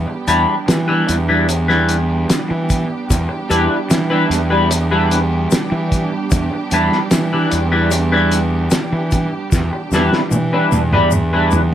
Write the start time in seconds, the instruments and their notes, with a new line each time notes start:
Already playing: string section G3 B3 D4 G4
0.08 muted clean electric guitar stroke
0.27 fingered electric bass E2, clean electric guitar G3 D4 E4 B4, closed hi-hat, shaker
0.68 fingered electric bass E3, muted clean electric guitar stroke, snare, closed hi-hat, shaker
0.88 clean electric guitar G3 D4 E4 B4
1.09 fingered electric bass E2, closed hi-hat, shaker
1.29 clean electric guitar G3 D4 E4 B4
1.49 muted clean electric guitar stroke, closed hi-hat, shaker
1.68 clean electric guitar G3 D4 E4 B4, snare
1.89 closed hi-hat, shaker
2.30 snare, closed hi-hat, shaker
2.49 fingered electric bass E3, muted clean electric guitar stroke
2.70 kick, closed hi-hat, shaker
3.10 fingered electric bass E2, kick, closed hi-hat, shaker
3.29 muted clean electric guitar stroke
3.50 fingered electric bass E2, clean electric guitar G3 D4 E4 B4, closed hi-hat, shaker
3.90 fingered electric bass E3, muted clean electric guitar stroke, snare, closed hi-hat, shaker
4.10 clean electric guitar G3 D4 E4 B4
4.30 fingered electric bass E2, closed hi-hat, shaker
4.50 clean electric guitar G3 D4 E4 B4
4.71 muted clean electric guitar stroke, closed hi-hat, shaker
4.91 clean electric guitar G3 D4 E4 B4
5.11 closed hi-hat, shaker
5.51 snare, closed hi-hat, shaker
5.72 fingered electric bass E3, muted clean electric guitar stroke
5.92 kick, closed hi-hat, shaker
6.31 fingered electric bass E2, kick, closed hi-hat, shaker
6.52 muted clean electric guitar stroke
6.71 fingered electric bass E2, clean electric guitar G3 D4 E4 B4, closed hi-hat, shaker
6.92 snare
7.11 fingered electric bass E3, muted clean electric guitar stroke, snare, closed hi-hat, shaker
7.33 clean electric guitar G3 D4 E4 B4
7.51 fingered electric bass E2, closed hi-hat, shaker
7.72 clean electric guitar G3 D4 E4 B4
7.91 muted clean electric guitar stroke, closed hi-hat, shaker
8.12 clean electric guitar G3 D4 E4 B4
8.32 closed hi-hat, shaker
8.71 snare, closed hi-hat, shaker
8.92 fingered electric bass E3, muted clean electric guitar stroke
9.11 kick, closed hi-hat, shaker
9.52 fingered electric bass E2, kick, snare, shaker
9.73 muted clean electric guitar stroke
9.91 fingered electric bass E2, clean electric guitar G3 D4 E4 B4, snare, shaker
10.13 snare
10.31 fingered electric bass E3, muted clean electric guitar stroke, high tom, shaker
10.53 clean electric guitar G3 D4 E4 B4
10.72 fingered electric bass E2, high tom, shaker
10.93 clean electric guitar G3 D4 E4 B4, mid tom
11.11 muted clean electric guitar stroke, mid tom, shaker
11.33 clean electric guitar G3 D4 E4 B4
11.51 mid tom, shaker